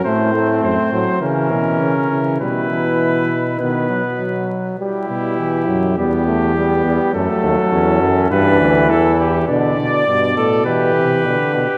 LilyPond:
<<
  \new Staff \with { instrumentName = "Trumpet" } { \time 4/4 \key e \minor \tempo 4 = 102 c''4 c''4 ais'2 | b'2 b'4. r8 | g'2 g'2 | a'2 b'4 a'8 g'8 |
\key g \major d''2 b'2 | }
  \new Staff \with { instrumentName = "Flugelhorn" } { \time 4/4 \key e \minor c'2 cis'2 | e'2 b4. r8 | e'2 b4 b4 | a4 cis'4 d'4 e'4 |
\key g \major d'8 d''4 a'8 g'4. g'8 | }
  \new Staff \with { instrumentName = "Trombone" } { \clef bass \time 4/4 \key e \minor a8 a4 fis8 e4. e8 | g8 e4 r8 dis8 fis8 fis4 | g8 g8 e8 fis8 g8 a8 g8 g8 | fis2 e2 |
\key g \major d4 b,4 e4 d4 | }
  \new Staff \with { instrumentName = "Bass trombone" } { \clef bass \time 4/4 \key e \minor a,4 fis,8 a,8 cis8 b,8 cis8 cis8 | b,2 b,4. r8 | r8 b,4 fis,8 e,4. e,8 | fis,8 dis,8 e,8 fis,8 g,8 d,8 e,4 |
\key g \major b,8 b,8 g,8 a,8 b,8 c8 b,8 b,8 | }
>>